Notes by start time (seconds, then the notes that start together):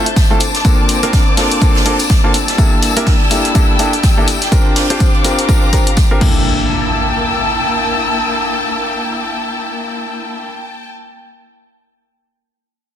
Already playing: D4 C5 E5 A5 G6
0.06 closed hi-hat
0.16 kick, snare, closed hi-hat, tambourine
0.30 A3 C4 E4 F4 A4
0.40 A#3 C4 C5 D6, open hi-hat, tambourine
0.55 D5, snare, closed hi-hat
0.65 A#3 C4 D4 F4 A4, kick, closed hi-hat, tambourine
0.89 open hi-hat, tambourine
1.03 A#3 C4 D4 F4 A#4, closed hi-hat
1.13 kick, snare, closed hi-hat, tambourine
1.37 A#3 C4 D4 F4 A4, snare, open hi-hat
1.51 closed hi-hat
1.61 A#3 C4 D4 F4 A4, kick, closed hi-hat, tambourine
1.75 snare, open hi-hat
1.86 A#3 C4 D4 F4 A4, open hi-hat
1.99 closed hi-hat, tambourine
2.10 kick, snare, closed hi-hat, tambourine
2.24 A#3 C4 D4 F4 A4
2.34 G3 E4 G4 E6, open hi-hat, tambourine
2.48 snare, closed hi-hat
2.58 A#3 D4 E4 G4 A4, kick, closed hi-hat, tambourine
2.82 open hi-hat, tambourine
2.97 A#3 D4 E4 G4 A#4, closed hi-hat
3.07 G5, kick, snare, closed hi-hat, open hi-hat
3.31 A#3 D4 E4 G4 A4, open hi-hat, tambourine
3.45 closed hi-hat
3.55 A#3 D4 E4 G4 A4, kick, closed hi-hat, tambourine
3.79 A#3 D4 E4 G4 A4, open hi-hat, tambourine
3.93 closed hi-hat
4.03 kick, snare, closed hi-hat, tambourine
4.18 A#3 D4 E4 G4 A4
4.28 open hi-hat, tambourine
4.42 snare, closed hi-hat
4.52 C4 D4 F4 G4 A#4 F5 D6, kick, closed hi-hat, tambourine
4.61 C5
4.76 snare, open hi-hat
4.90 C4 D4 F4 G4 C5, closed hi-hat
5.00 kick, closed hi-hat, tambourine
5.14 closed hi-hat
5.24 C4 D4 F4 G4 A#4 F5, open hi-hat, tambourine
5.39 A#5, closed hi-hat
5.49 C4 D4 F4 G4 A#4, kick, closed hi-hat, tambourine
5.73 C4 D4 F4 G4 A#4, kick, open hi-hat, tambourine
5.87 closed hi-hat
5.97 kick, snare, closed hi-hat, tambourine
6.11 C4 D4 F4 G4 A#4
6.21 A#3 D4 E4 G5 A5 E6, kick, crash, impact
6.30 A#3
6.62 G5
6.68 A5